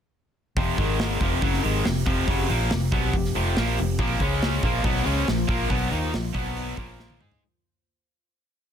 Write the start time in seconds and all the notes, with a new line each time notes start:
0.57 F1 F2 C3 F3, kick, open hi-hat
0.78 G#1 G#2 D#3 G#3 D#4 A#4, kick, open hi-hat
0.99 snare, open hi-hat
1.21 F1 F2 C3 F3 C4 G4, kick, open hi-hat
1.42 F#1 F#2 C#3 F#3, kick, open hi-hat
1.53 snare
1.64 G#1 G#2 D#3 G#3, open hi-hat
1.85 F1 F2 C3, snare, open hi-hat
2.06 F1 F2 C3 F3, kick
2.28 F#1 F#2 C#3 F#3, kick, open hi-hat
2.49 A#1 A#2 F3 A#3, open hi-hat
2.70 F2 C3, snare, open hi-hat
2.92 B1 B2 F#3 B3, kick, open hi-hat
3.13 F1 F2 C3, kick, open hi-hat
3.25 snare
3.35 F1 F2 C3 F3, open hi-hat
3.56 A#1 A#2 F3 A#3, snare, open hi-hat
3.78 F1 F2 C3, open hi-hat
3.99 A#1 A#2 F3 A#3, kick, open hi-hat
4.20 C#2 C#3 G#3 C#4 G#4 D#5, kick, open hi-hat
4.42 snare, open hi-hat
4.63 A#1 A#2 F3 A#3 F4 C5, kick, open hi-hat
4.84 B1 B2 F#3 B3, kick, open hi-hat
4.96 snare
5.06 C#2 C#3 G#3 C#4, open hi-hat
5.27 A#1 A#2 F3, snare, open hi-hat
5.48 A#1 A#2 F3 A#3, kick, open hi-hat
5.70 B1 B2 F#3 B3, kick, open hi-hat
5.91 D#2 D#3 A#3 D#4, open hi-hat
6.14 A#1 A#2 F3, snare, open hi-hat
6.33 B1 B2 F#3 B3 F#4 C#5, kick, open hi-hat
6.57 open hi-hat
6.77 A#1 A#2 F3 A#3 F4 C5, kick
7.00 snare
7.10 high tom
7.20 G#2 G#3 D#4 G#4, mid tom
7.32 floor tom